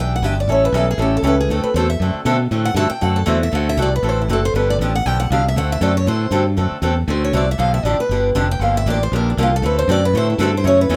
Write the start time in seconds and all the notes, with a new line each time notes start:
Already playing: B1 E3 B3 D4 G4
0.00 G5
0.16 F#5
0.22 G1 E3 B3 D4 G4 E5
0.40 D5
0.48 A1 E3 G3 C#4 E4 A4
0.52 C#5
0.65 B4
0.72 B1 E3 G3 C#4 E4 A4
0.77 A4
0.91 G#4
0.98 A1 E3 G3 C#4 E4 A4
1.02 G4
1.17 A4
1.23 C#2 E3 G3 C#4 E4 A4
1.27 B4
1.41 G#4
1.49 D2 D3 A3 C4 F#4 A4
1.64 B4
1.74 E2 D3 A3 C4 F#4 A4 C5
1.90 E5
2.00 F#2 D3 A3 C4 F#4 A4
2.15 muted fingered electric bass stroke
2.25 B2 D3 A3 C4 F#4 A4
2.51 A2 D3 A3 C4 F#4 A4
2.65 F#5
2.74 G2 D3 A3 C4 F#4 A4 A5
2.90 G5, muted fingered electric bass stroke
3.01 F#2 D3 A3 C4 F#4 A4 F#5
3.16 A4
3.26 E2 D3 A3 C4 F#4 A4 C5
3.43 E5
3.51 D2 D3 A3 C4 F#4 A4 F#5
3.69 E5
3.77 C2 D3 A3 C4 F#4 A4
3.82 D5
3.96 B4
4.03 A1 D3 A3 C4 F#4 A4
4.09 C5
4.22 E4
4.28 F#1 D3 A3 C4 F#4 A4
4.33 A4
4.45 C5
4.54 G1 D3 F3 B3 D4 G4 B4
4.70 D5
4.79 A1 D3 F3 B3 D4 G4
4.95 F#5
5.06 B1 D3 F3 B3 D4 G4 G5
5.20 F#5
5.30 C2 D3 F3 B3 D4 G4 F5
5.48 E5
5.56 D2 D3 A3 C4 F#4 A4 F#5
5.72 E5
5.81 F#2 D3 A3 C4 F#4 A4 D5
5.97 C#5
6.07 A2 D3 A3 C4 F#4 A4 C5
6.31 G2 D3 A3 C4 F#4 A4
6.57 F#2 D3 A3 C4 F#4 A4
6.71 muted fingered electric bass stroke
6.82 E2 D3 A3 C4 F#4 A4
7.08 D2 D3 A3 C4 F#4 A4 C5
7.24 C#5
7.33 C2 D3 A3 C4 F#4 A4 D5
7.51 E5
7.58 B1 D3 F3 B3 D4 G4 F5
7.74 E5
7.83 A1 D3 F3 B3 D4 G4 D5
8.00 B4
8.09 G1 D3 F3 B3 D4 G4
8.35 F1 D3 F3 B3 D4 G4
8.51 G5
8.59 G1 D3 F3 A#3 D4 G4 F5
8.77 E5
8.86 A1 D3 F3 A#3 D4 G4
8.90 D5
9.03 C5
9.12 A#1 D3 F3 A#3 D4 G4
9.16 A#4
9.30 D4
9.37 C2 D3 F3 A#3 D4 G4
9.43 F4
9.56 A4
9.62 D2 D3 A3 C4 F#4 A4 B4
9.79 C5
9.88 F#2 D3 A3 C4 F#4 A4 D5
10.05 B4
10.14 A2 D3 A3 C4 F#4 A4 C5
10.30 E4
10.38 G2 D3 A3 C4 F#4 A4
10.43 A4
10.57 C5
10.64 F#2 C#3 E3 A3 C#4 F#4 C#5
10.81 B4
10.89 E2 C#3 E3 A3 C#4 F#4